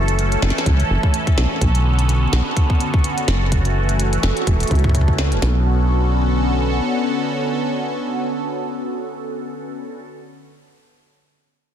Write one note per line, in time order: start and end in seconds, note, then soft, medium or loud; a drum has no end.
0.00 0.37 F#1 loud
0.00 1.59 E3 medium
0.00 1.59 A3 medium
0.00 5.38 C#4 medium
0.00 1.57 F#4 medium
0.00 5.38 A4 medium
0.08 closed hi-hat soft
0.19 closed hi-hat medium
0.32 closed hi-hat soft
0.42 0.52 F#1 medium
0.42 snare loud
0.50 snare medium
0.58 snare medium
0.66 0.84 C#2 medium
0.66 kick loud
0.66 closed hi-hat medium
0.80 closed hi-hat soft
0.90 0.99 F#1 medium
1.03 kick loud
1.14 closed hi-hat medium
1.27 kick medium
1.27 closed hi-hat soft
1.38 1.47 B1 medium
1.38 snare loud
1.61 2.28 B1 medium
1.61 3.50 D3 medium
1.61 3.50 B3 medium
1.61 5.39 F#4 medium
1.61 kick medium
1.61 closed hi-hat medium
1.75 closed hi-hat soft
1.99 closed hi-hat soft
2.09 closed hi-hat medium
2.33 2.42 B1 medium
2.33 snare loud
2.57 kick loud
2.57 closed hi-hat medium
2.70 kick medium
2.81 closed hi-hat soft
2.94 kick loud
3.04 closed hi-hat medium
3.18 closed hi-hat soft
3.28 4.18 F#1 loud
3.28 snare loud
3.52 5.40 E3 medium
3.52 5.40 A3 medium
3.52 kick medium
3.52 closed hi-hat medium
3.65 closed hi-hat soft
3.89 closed hi-hat soft
4.00 closed hi-hat medium
4.13 closed hi-hat soft
4.23 4.33 F#1 medium
4.23 snare loud
4.37 closed hi-hat soft
4.47 4.65 E1 medium
4.47 kick loud
4.47 closed hi-hat medium
4.60 closed hi-hat soft
4.63 closed hi-hat soft
4.67 5.33 C#2 loud
4.67 kick medium
4.67 closed hi-hat soft
4.71 closed hi-hat soft
4.75 closed hi-hat soft
4.79 closed hi-hat soft
4.84 kick loud
4.89 kick medium
4.95 kick medium
4.95 closed hi-hat medium
5.01 kick medium
5.08 kick medium
5.18 snare loud
5.32 5.39 E1 medium
5.32 closed hi-hat soft
5.42 6.81 B1 medium
5.42 9.99 D3 medium
5.42 9.99 B3 medium
5.42 9.99 C#4 medium
5.42 9.99 F#4 medium
5.42 9.99 A4 medium
5.42 snare loud